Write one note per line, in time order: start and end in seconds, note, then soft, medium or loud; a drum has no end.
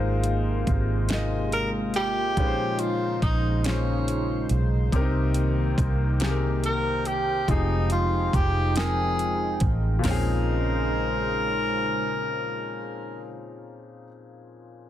0.00 0.64 G#1 loud
0.00 2.34 C3 medium
0.00 0.75 G#3 medium
0.00 4.89 G#3 medium
0.00 2.34 A#3 medium
0.00 0.75 D#4 medium
0.00 0.76 F4 medium
0.00 2.33 F4 medium
0.00 0.76 A#4 medium
0.00 0.77 C5 loud
0.24 closed hi-hat medium
0.67 2.38 G#1 medium
0.67 kick loud
0.67 closed hi-hat medium
1.09 2.03 G#3 medium
1.09 2.03 D#4 medium
1.09 2.03 F4 medium
1.09 2.04 A#4 medium
1.09 2.04 D#5 medium
1.09 snare loud
1.09 closed hi-hat medium
1.52 1.69 A#4 loud
1.52 closed hi-hat medium
1.94 2.81 G4 loud
1.94 closed hi-hat medium
2.37 3.19 A#1 loud
2.37 3.30 A#2 medium
2.37 4.90 C#3 medium
2.37 3.31 F3 medium
2.37 3.31 G#3 medium
2.37 3.31 C#4 medium
2.37 4.90 D#4 loud
2.37 3.31 D#4 medium
2.37 2.45 B4 medium
2.37 7.44 C5 medium
2.37 kick loud
2.37 closed hi-hat medium
2.47 3.35 C5 loud
2.79 3.22 F4 loud
2.79 closed hi-hat medium
3.22 4.46 A#1 loud
3.22 3.67 D#4 medium
3.22 kick loud
3.22 closed hi-hat medium
3.64 4.58 A#2 medium
3.64 4.58 F3 medium
3.64 4.59 G#3 medium
3.64 4.61 C#4 medium
3.64 4.59 C#4 medium
3.64 4.59 D#4 medium
3.64 4.60 C5 medium
3.64 snare loud
3.64 closed hi-hat medium
4.08 closed hi-hat medium
4.49 4.89 B1 medium
4.49 closed hi-hat medium
4.92 5.74 C2 loud
4.92 5.86 C3 loud
4.92 7.46 D#3 medium
4.92 7.46 A#3 medium
4.92 5.86 C4 medium
4.92 5.00 C#4 medium
4.92 5.87 G4 medium
4.92 5.87 A#4 loud
4.92 9.99 G5 loud
4.92 kick loud
4.92 closed hi-hat medium
5.01 5.90 D#4 medium
5.34 closed hi-hat medium
5.78 7.44 C2 loud
5.78 kick loud
5.78 closed hi-hat medium
6.20 7.13 C3 medium
6.20 7.14 C4 medium
6.20 7.14 D#4 medium
6.20 7.15 G4 medium
6.20 6.28 G#4 medium
6.20 snare loud
6.20 closed hi-hat medium
6.30 7.18 A#4 medium
6.64 7.08 A#4 medium
6.64 closed hi-hat medium
7.05 7.51 G4 loud
7.05 closed hi-hat medium
7.48 8.30 F1 loud
7.48 8.41 F3 medium
7.48 10.01 F3 medium
7.48 10.01 G#3 medium
7.48 8.41 C4 medium
7.48 10.01 D#4 medium
7.48 7.91 D#4 medium
7.48 8.42 D#4 medium
7.48 8.42 G4 medium
7.48 8.42 G#4 medium
7.48 kick loud
7.48 closed hi-hat medium
7.90 8.37 F4 medium
7.90 closed hi-hat medium
8.33 9.57 F1 medium
8.33 8.76 G4 loud
8.33 kick loud
8.33 closed hi-hat medium
8.76 9.69 F3 medium
8.76 9.69 C4 medium
8.76 9.69 D#4 medium
8.76 9.68 G#4 loud
8.76 9.70 A#4 medium
8.76 9.70 G5 medium
8.76 snare loud
8.76 closed hi-hat medium
9.19 closed hi-hat medium
9.60 10.00 A1 loud
9.60 kick loud
9.60 closed hi-hat medium
9.99 14.03 A#2 medium
9.99 14.04 F3 medium
9.99 13.35 G#3 medium
10.03 14.05 A#1 loud
10.03 13.35 C#3 medium
10.03 14.05 C4 medium
10.03 14.06 C#4 medium
10.03 13.35 D#4 medium
10.03 13.36 A#4 loud
10.03 13.35 C5 medium
10.03 snare loud
10.03 floor tom loud
10.03 open hi-hat medium
10.08 14.07 D#4 medium
10.08 14.08 G#4 medium